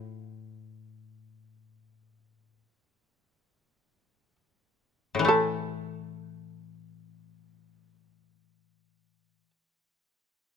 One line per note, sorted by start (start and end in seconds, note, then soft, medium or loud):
0.00 2.62 A2 medium
0.00 0.23 A#3 soft
0.00 0.55 E4 soft
0.00 0.29 F#4 medium
0.29 0.58 G4 medium
0.58 0.88 G#4 medium
0.88 4.36 A4 medium
5.15 9.41 A2 soft
5.19 9.45 E3 soft
5.25 9.51 A3 soft
5.25 9.50 A4 medium